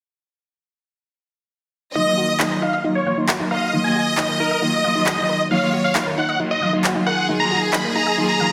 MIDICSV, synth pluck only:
0, 0, Header, 1, 2, 480
1, 0, Start_track
1, 0, Key_signature, -6, "minor"
1, 0, Tempo, 444444
1, 2110, Time_signature, 4, 2, 24, 8
1, 9204, End_track
2, 0, Start_track
2, 0, Title_t, "Synth pluck"
2, 0, Program_c, 0, 84
2, 2111, Note_on_c, 0, 63, 79
2, 2186, Note_off_c, 0, 63, 0
2, 2350, Note_on_c, 0, 66, 72
2, 2380, Note_off_c, 0, 66, 0
2, 2590, Note_on_c, 0, 63, 97
2, 2620, Note_off_c, 0, 63, 0
2, 2710, Note_on_c, 0, 70, 80
2, 2760, Note_off_c, 0, 70, 0
2, 2830, Note_on_c, 0, 63, 95
2, 2906, Note_off_c, 0, 63, 0
2, 2950, Note_on_c, 0, 75, 100
2, 3000, Note_off_c, 0, 75, 0
2, 3070, Note_on_c, 0, 63, 86
2, 3146, Note_off_c, 0, 63, 0
2, 3310, Note_on_c, 0, 77, 76
2, 3340, Note_off_c, 0, 77, 0
2, 3431, Note_on_c, 0, 63, 71
2, 3506, Note_off_c, 0, 63, 0
2, 3550, Note_on_c, 0, 66, 98
2, 3580, Note_off_c, 0, 66, 0
2, 3670, Note_on_c, 0, 63, 76
2, 3720, Note_off_c, 0, 63, 0
2, 3790, Note_on_c, 0, 70, 78
2, 3820, Note_off_c, 0, 70, 0
2, 4030, Note_on_c, 0, 63, 78
2, 4106, Note_off_c, 0, 63, 0
2, 4270, Note_on_c, 0, 66, 71
2, 4300, Note_off_c, 0, 66, 0
2, 4511, Note_on_c, 0, 63, 100
2, 4541, Note_off_c, 0, 63, 0
2, 4631, Note_on_c, 0, 70, 77
2, 4681, Note_off_c, 0, 70, 0
2, 4751, Note_on_c, 0, 63, 98
2, 4826, Note_off_c, 0, 63, 0
2, 4871, Note_on_c, 0, 75, 106
2, 4921, Note_off_c, 0, 75, 0
2, 4991, Note_on_c, 0, 63, 85
2, 5066, Note_off_c, 0, 63, 0
2, 5230, Note_on_c, 0, 77, 77
2, 5260, Note_off_c, 0, 77, 0
2, 5351, Note_on_c, 0, 63, 73
2, 5426, Note_off_c, 0, 63, 0
2, 5471, Note_on_c, 0, 66, 96
2, 5501, Note_off_c, 0, 66, 0
2, 5590, Note_on_c, 0, 63, 78
2, 5641, Note_off_c, 0, 63, 0
2, 5711, Note_on_c, 0, 70, 78
2, 5741, Note_off_c, 0, 70, 0
2, 5950, Note_on_c, 0, 63, 81
2, 6026, Note_off_c, 0, 63, 0
2, 6191, Note_on_c, 0, 66, 75
2, 6221, Note_off_c, 0, 66, 0
2, 6430, Note_on_c, 0, 63, 99
2, 6460, Note_off_c, 0, 63, 0
2, 6550, Note_on_c, 0, 70, 73
2, 6600, Note_off_c, 0, 70, 0
2, 6670, Note_on_c, 0, 63, 95
2, 6745, Note_off_c, 0, 63, 0
2, 6790, Note_on_c, 0, 75, 100
2, 6840, Note_off_c, 0, 75, 0
2, 6910, Note_on_c, 0, 63, 85
2, 6985, Note_off_c, 0, 63, 0
2, 7150, Note_on_c, 0, 77, 76
2, 7180, Note_off_c, 0, 77, 0
2, 7270, Note_on_c, 0, 63, 77
2, 7345, Note_off_c, 0, 63, 0
2, 7390, Note_on_c, 0, 66, 98
2, 7420, Note_off_c, 0, 66, 0
2, 7510, Note_on_c, 0, 63, 73
2, 7560, Note_off_c, 0, 63, 0
2, 7630, Note_on_c, 0, 70, 76
2, 7660, Note_off_c, 0, 70, 0
2, 7870, Note_on_c, 0, 63, 79
2, 7945, Note_off_c, 0, 63, 0
2, 8111, Note_on_c, 0, 66, 73
2, 8141, Note_off_c, 0, 66, 0
2, 8351, Note_on_c, 0, 63, 97
2, 8381, Note_off_c, 0, 63, 0
2, 8472, Note_on_c, 0, 70, 78
2, 8521, Note_off_c, 0, 70, 0
2, 8592, Note_on_c, 0, 63, 95
2, 8666, Note_off_c, 0, 63, 0
2, 8711, Note_on_c, 0, 75, 103
2, 8761, Note_off_c, 0, 75, 0
2, 8831, Note_on_c, 0, 63, 82
2, 8906, Note_off_c, 0, 63, 0
2, 9071, Note_on_c, 0, 77, 78
2, 9101, Note_off_c, 0, 77, 0
2, 9204, End_track
0, 0, End_of_file